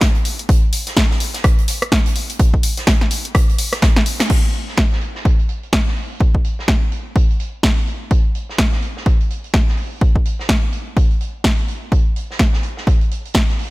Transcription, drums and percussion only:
0.01 kick, snare, closed hi-hat
0.15 closed hi-hat
0.25 closed hi-hat, open hi-hat
0.39 closed hi-hat
0.49 kick, closed hi-hat
0.73 closed hi-hat, open hi-hat
0.87 snare, closed hi-hat
0.96 kick, snare, closed hi-hat
1.11 snare
1.20 closed hi-hat, open hi-hat
1.34 snare, closed hi-hat
1.44 kick, cross-stick, closed hi-hat
1.58 closed hi-hat
1.68 closed hi-hat, open hi-hat
1.82 cross-stick, closed hi-hat
1.92 kick, snare, closed hi-hat
2.06 closed hi-hat
2.16 open hi-hat
2.30 closed hi-hat
2.39 kick, closed hi-hat
2.54 kick
2.63 closed hi-hat, open hi-hat
2.77 snare, closed hi-hat
2.87 kick, snare, closed hi-hat
3.01 snare
3.11 closed hi-hat, open hi-hat
3.25 closed hi-hat
3.35 kick, cross-stick, closed hi-hat
3.49 closed hi-hat
3.58 closed hi-hat, open hi-hat
3.72 cross-stick, snare, closed hi-hat
3.82 kick, snare, closed hi-hat
3.96 snare
4.06 open hi-hat
4.20 snare, closed hi-hat
4.30 kick, closed hi-hat, crash
4.53 closed hi-hat
4.68 snare
4.77 kick, snare, closed hi-hat
4.92 snare
5.01 closed hi-hat
5.15 snare
5.25 kick, closed hi-hat
5.39 closed hi-hat
5.49 closed hi-hat
5.63 closed hi-hat
5.73 kick, snare
5.87 snare
5.96 open hi-hat
6.20 kick, closed hi-hat
6.35 kick
6.44 closed hi-hat
6.59 snare
6.68 kick, snare, closed hi-hat
6.92 closed hi-hat
7.16 kick, closed hi-hat
7.30 closed hi-hat
7.40 closed hi-hat
7.63 kick, snare
7.78 closed hi-hat
7.87 closed hi-hat
8.10 kick, closed hi-hat
8.35 closed hi-hat
8.49 snare
8.58 kick, snare, closed hi-hat
8.72 snare
8.82 closed hi-hat
8.97 snare
9.06 kick, closed hi-hat
9.21 closed hi-hat
9.30 closed hi-hat
9.44 closed hi-hat
9.53 kick, snare, closed hi-hat
9.68 snare
9.77 open hi-hat
10.01 kick, closed hi-hat
10.16 kick
10.25 closed hi-hat
10.39 snare
10.49 kick, snare, closed hi-hat
10.72 closed hi-hat
10.96 kick, closed hi-hat
11.11 closed hi-hat
11.21 closed hi-hat
11.44 kick, snare, closed hi-hat
11.58 closed hi-hat
11.68 closed hi-hat
11.92 kick, closed hi-hat
12.16 closed hi-hat
12.31 snare
12.39 kick, snare, closed hi-hat
12.53 snare
12.63 closed hi-hat
12.77 snare
12.87 kick, closed hi-hat
13.01 closed hi-hat
13.11 closed hi-hat
13.25 closed hi-hat
13.34 kick, snare, closed hi-hat
13.49 snare
13.59 open hi-hat

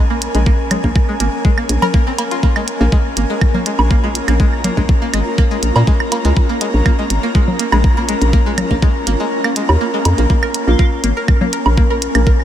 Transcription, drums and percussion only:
0.22 closed hi-hat
0.35 closed hi-hat
0.46 kick
0.71 closed hi-hat, low conga, high woodblock
0.84 kick
0.96 kick
1.20 closed hi-hat
1.45 kick
1.58 high woodblock
1.69 closed hi-hat
1.82 low conga, low woodblock
1.94 kick
2.18 closed hi-hat, low woodblock
2.31 closed hi-hat
2.43 kick
2.56 high woodblock
2.68 closed hi-hat
2.92 kick
3.17 closed hi-hat
3.41 kick, high woodblock
3.54 low conga
3.66 closed hi-hat
3.79 low woodblock
3.91 kick
4.15 closed hi-hat
4.28 closed hi-hat, high woodblock
4.40 kick
4.64 closed hi-hat, low conga
4.77 kick
4.89 kick
5.14 closed hi-hat, high woodblock
5.38 kick
5.63 closed hi-hat
5.76 low woodblock
5.87 kick
6.00 high woodblock
6.12 closed hi-hat, low woodblock
6.25 closed hi-hat
6.37 kick
6.61 closed hi-hat
6.86 kick, high woodblock
7.10 closed hi-hat
7.35 kick
7.48 low conga
7.59 closed hi-hat
7.72 high woodblock, low woodblock
7.84 kick
8.09 closed hi-hat
8.22 closed hi-hat
8.33 kick
8.58 closed hi-hat, low conga, high woodblock
8.71 kick
8.82 kick
9.07 closed hi-hat
9.44 high woodblock
9.56 closed hi-hat
9.69 low woodblock
10.05 closed hi-hat, low woodblock
10.18 closed hi-hat
10.30 kick
10.43 high woodblock
10.54 closed hi-hat
10.79 kick
11.04 closed hi-hat
11.28 kick, high woodblock
11.41 low conga
11.53 closed hi-hat
11.66 low woodblock
11.77 kick
12.02 closed hi-hat
12.15 closed hi-hat, high woodblock
12.27 kick

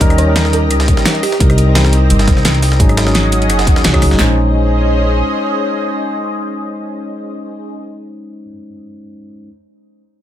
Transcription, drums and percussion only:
0.01 kick, closed hi-hat
0.10 cross-stick, closed hi-hat
0.18 closed hi-hat
0.36 snare, closed hi-hat
0.45 snare
0.53 closed hi-hat
0.71 cross-stick, closed hi-hat
0.80 snare, closed hi-hat
0.88 kick, closed hi-hat
0.97 snare
1.06 snare, closed hi-hat
1.15 closed hi-hat
1.23 cross-stick, closed hi-hat, open hi-hat
1.32 snare
1.40 kick, closed hi-hat
1.50 cross-stick, closed hi-hat
1.58 closed hi-hat
1.75 snare, closed hi-hat
1.85 snare
1.93 closed hi-hat
2.10 closed hi-hat
2.19 snare, closed hi-hat
2.28 kick, snare, closed hi-hat
2.37 snare
2.45 snare, closed hi-hat
2.55 closed hi-hat
2.62 snare, closed hi-hat, open hi-hat
2.72 snare
2.80 kick, closed hi-hat
2.89 cross-stick, closed hi-hat
2.97 snare, closed hi-hat
3.07 snare
3.15 snare, closed hi-hat
3.32 closed hi-hat
3.42 closed hi-hat
3.50 cross-stick, closed hi-hat
3.59 snare, closed hi-hat
3.67 kick, closed hi-hat
3.76 snare
3.84 snare, closed hi-hat
3.94 kick, cross-stick, closed hi-hat
4.02 cross-stick, closed hi-hat, open hi-hat
4.11 snare
4.19 snare

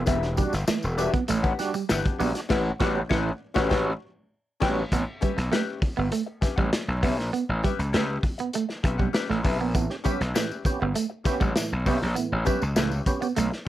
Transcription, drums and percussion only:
0.06 kick, closed hi-hat, tambourine
0.23 snare, closed hi-hat
0.37 kick, closed hi-hat, tambourine
0.53 snare, closed hi-hat, tambourine
0.68 snare, tambourine
0.83 tambourine
0.98 closed hi-hat, tambourine
1.14 kick, closed hi-hat
1.28 closed hi-hat, tambourine
1.44 kick, closed hi-hat
1.59 snare, closed hi-hat, tambourine
1.74 closed hi-hat, tambourine
1.89 snare, tambourine
2.05 kick, closed hi-hat
2.20 open hi-hat, tambourine
2.35 snare, closed hi-hat
2.50 kick, snare, crash
2.80 kick, snare
3.11 kick, snare
3.56 kick, snare
3.71 kick, snare
4.62 kick, snare, crash
4.92 kick, closed hi-hat
5.22 kick, closed hi-hat
5.38 snare, closed hi-hat
5.52 snare, closed hi-hat
5.82 kick, open hi-hat
6.12 closed hi-hat
6.42 kick, snare, closed hi-hat
6.58 kick
6.73 snare, closed hi-hat
7.03 kick, open hi-hat
7.19 snare
7.34 closed hi-hat
7.64 kick, closed hi-hat
7.80 closed hi-hat
7.94 snare, closed hi-hat
8.23 kick, open hi-hat
8.39 closed hi-hat
8.53 closed hi-hat
8.70 snare
8.84 kick, closed hi-hat
8.99 kick
9.14 snare, closed hi-hat
9.30 snare
9.45 kick, open hi-hat
9.75 kick, closed hi-hat, tambourine
9.90 snare
10.04 kick, closed hi-hat, tambourine
10.21 snare, closed hi-hat
10.35 snare, closed hi-hat, tambourine
10.51 tambourine
10.65 kick, closed hi-hat, tambourine
10.95 closed hi-hat, tambourine
11.25 kick, snare, closed hi-hat, tambourine
11.41 kick, tambourine
11.56 snare, closed hi-hat, tambourine
11.86 kick, open hi-hat, tambourine
12.02 snare
12.16 closed hi-hat, tambourine
12.46 kick, closed hi-hat, tambourine
12.62 tambourine
12.76 snare, closed hi-hat, tambourine
12.91 tambourine
13.06 kick, closed hi-hat, tambourine
13.22 closed hi-hat, tambourine
13.36 closed hi-hat, tambourine
13.53 snare

